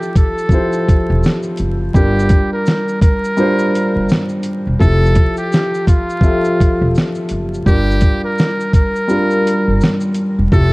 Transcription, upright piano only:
0.00 0.51 F3 medium
0.00 0.52 E4 medium
0.00 0.53 G4 medium
0.00 1.97 A4 medium
0.51 1.50 F3 medium
0.51 1.51 E4 medium
0.51 1.51 G4 medium
0.51 1.52 C5 medium
1.94 2.93 G3 medium
1.94 2.93 D4 medium
1.94 2.94 F4 medium
1.94 2.94 A#4 medium
3.37 4.36 G3 medium
3.37 4.36 D4 medium
3.37 4.37 F4 medium
3.37 4.37 C5 medium
4.79 5.79 F3 medium
4.79 5.79 E4 medium
4.79 5.79 G4 medium
4.79 5.80 A4 medium
6.22 7.21 F3 medium
6.22 7.22 G4 medium
6.22 7.23 A4 medium
6.22 7.22 E5 medium
7.66 8.65 G3 medium
7.66 8.65 D4 medium
7.66 8.65 F4 medium
7.66 8.66 A#4 medium
9.08 10.07 G3 medium
9.08 10.08 D4 medium
9.08 10.08 F4 medium
9.08 10.09 A#4 medium
10.52 10.73 F3 medium
10.52 10.73 E4 medium
10.52 10.73 G4 medium
10.52 10.73 A4 medium

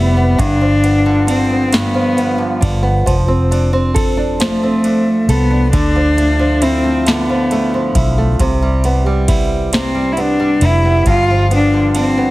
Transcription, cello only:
0.00 0.40 B3 medium
0.39 1.28 D4 loud
1.30 1.77 C4 medium
1.76 2.74 B3 medium
4.41 5.32 A3 medium
5.30 5.73 B3 medium
5.73 6.65 D4 loud
6.63 7.09 C4 medium
7.08 8.07 B3 medium
9.75 10.14 C4 medium
10.12 10.22 E4 medium
10.20 10.68 D4 medium
10.66 11.08 E4 medium
11.10 11.50 F4 loud
11.56 11.95 D4 medium
11.99 12.31 C4 medium

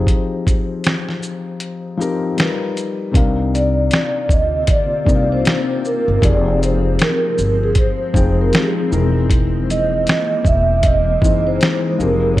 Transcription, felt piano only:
0.00 1.13 F3 medium
0.00 1.14 C4 medium
0.00 1.14 D#4 medium
0.00 1.15 G4 medium
0.00 1.15 G#4 medium
1.97 2.37 F3 medium
1.97 2.37 C4 medium
1.97 2.36 D#4 medium
1.97 2.38 G4 medium
1.97 2.38 A#4 medium
2.36 3.10 G3 medium
2.36 3.10 D#4 medium
2.36 3.11 F4 medium
2.36 3.11 A#4 medium
2.36 3.12 B4 medium
3.11 4.58 C3 medium
3.11 4.59 C4 medium
3.11 4.59 D4 medium
3.11 4.60 D#4 medium
3.11 4.60 A#4 medium
3.15 4.60 F5 medium
5.05 6.15 C3 medium
5.05 6.15 C4 medium
5.05 6.16 D4 medium
5.05 6.16 D#4 medium
5.05 6.16 A#4 medium
5.05 5.15 D#5 medium
5.15 6.20 F5 medium
6.21 7.67 F3 medium
6.21 7.68 C4 medium
6.21 7.68 D#4 medium
6.21 7.69 G4 medium
6.21 7.69 G#4 medium
8.14 8.91 F3 medium
8.14 8.89 C4 medium
8.14 8.90 D#4 medium
8.14 8.91 G#4 medium
8.14 8.92 G5 medium
8.90 10.36 E3 medium
8.90 10.36 C4 medium
8.90 10.37 D#4 medium
8.90 10.37 G#4 medium
8.90 10.38 A#4 medium
11.21 11.99 E3 medium
11.21 11.97 C4 medium
11.21 11.98 D#4 medium
11.21 12.00 G#4 medium
11.21 12.00 C5 medium
11.98 12.40 F3 medium
11.98 12.40 C4 medium
11.98 12.40 D#4 medium
11.98 12.40 G4 medium
11.98 12.40 G#4 medium

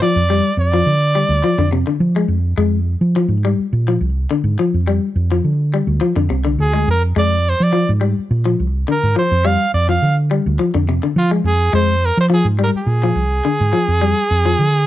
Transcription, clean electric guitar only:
0.02 0.22 F3 medium
0.30 0.51 G3 medium
0.74 0.94 F3 medium
1.15 1.36 G3 medium
1.44 1.55 F3 medium
1.59 1.69 D3 medium
1.73 1.84 C3 medium
1.87 2.08 D3 medium
2.16 2.37 G#3 medium
2.58 2.79 G#3 medium
3.16 3.37 F3 medium
3.45 3.65 G3 medium
3.88 4.09 F3 medium
4.31 4.51 D3 medium
4.59 4.80 F3 medium
4.87 5.08 G3 medium
5.32 5.52 F3 medium
5.74 5.94 G3 medium
6.01 6.12 F3 medium
6.16 6.26 D3 medium
6.30 6.41 C3 medium
6.45 6.66 D3 medium
6.73 6.94 G#3 medium
7.16 7.37 G#3 medium
7.73 7.94 F3 medium
8.01 8.22 G3 medium
8.45 8.66 F3 medium
8.88 9.09 D3 medium
9.16 9.37 F3 medium
9.45 9.65 G3 medium
9.89 10.09 F3 medium
10.31 10.52 G3 medium
10.59 10.70 F3 medium
10.74 10.84 D3 medium
10.89 10.99 C3 medium
11.03 11.24 D3 medium
11.31 11.52 G#3 medium
11.73 11.94 G#3 medium
12.30 12.51 F3 medium
12.59 12.80 G3 medium
13.03 13.24 F3 medium
13.45 13.66 D3 medium
13.73 13.94 F3 medium
14.01 14.23 G3 medium
14.46 14.67 F3 medium

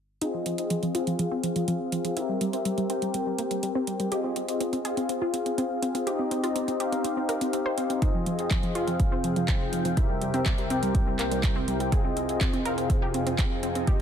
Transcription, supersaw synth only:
0.22 0.55 C4 medium
0.22 0.55 F4 medium
0.22 0.55 G#4 medium
0.22 0.55 D#5 medium
0.58 0.92 C4 medium
0.58 0.92 F4 medium
0.58 0.92 G#4 medium
0.58 0.92 D#5 medium
0.95 2.14 C4 medium
0.95 2.14 F4 medium
0.95 2.14 G#4 medium
0.95 2.14 F5 loud
2.17 2.50 C4 medium
2.17 2.50 G4 medium
2.17 2.50 A#4 medium
2.17 2.50 E5 medium
2.53 2.87 C4 medium
2.53 2.87 G4 medium
2.53 2.87 A#4 medium
2.53 2.87 E5 medium
2.90 4.09 C4 medium
2.90 4.09 G4 medium
2.90 4.09 A#4 medium
2.90 4.09 G5 loud
4.12 4.46 C4 medium
4.12 4.46 F4 medium
4.12 4.46 G#4 medium
4.12 4.46 D#5 medium
4.48 4.82 C4 medium
4.48 4.82 F4 medium
4.48 4.82 G#4 medium
4.48 4.82 D#5 medium
4.85 6.04 C4 medium
4.85 6.04 F4 medium
4.85 6.04 G#4 medium
4.85 6.04 F5 loud
6.07 6.41 C4 medium
6.07 6.41 D#4 medium
6.07 6.41 G4 medium
6.07 6.41 D#5 medium
6.44 6.77 C4 medium
6.44 6.77 D#4 medium
6.44 6.77 G4 medium
6.44 6.77 D#5 medium
6.80 7.99 C4 medium
6.80 7.99 D#4 medium
6.80 7.99 G4 medium
6.80 7.99 F5 loud
8.02 8.36 C4 medium
8.02 8.36 F4 medium
8.02 8.36 G#4 medium
8.02 8.36 D#5 medium
8.39 8.72 C4 medium
8.39 8.72 F4 medium
8.39 8.72 G#4 medium
8.39 8.72 D#5 medium
8.75 9.94 C4 medium
8.75 9.94 F4 medium
8.75 9.94 G#4 medium
8.75 9.94 F5 loud
9.97 10.31 C4 medium
9.97 10.31 G4 medium
9.97 10.31 A#4 medium
9.97 10.31 E5 medium
10.34 10.67 C4 medium
10.34 10.67 G4 medium
10.34 10.67 A#4 medium
10.34 10.67 E5 medium
10.70 11.89 C4 medium
10.70 11.89 G4 medium
10.70 11.89 A#4 medium
10.70 11.89 G5 loud
11.92 12.26 C4 medium
11.92 12.26 F4 medium
11.92 12.26 G#4 medium
11.92 12.26 D#5 medium
12.29 12.63 C4 medium
12.29 12.63 F4 medium
12.29 12.63 G#4 medium
12.29 12.63 D#5 medium
12.65 13.84 C4 medium
12.65 13.84 F4 medium
12.65 13.84 G#4 medium
12.65 13.84 F5 loud
13.87 14.02 C4 medium
13.87 14.02 D#4 medium
13.87 14.02 G4 medium
13.87 14.02 D#5 medium

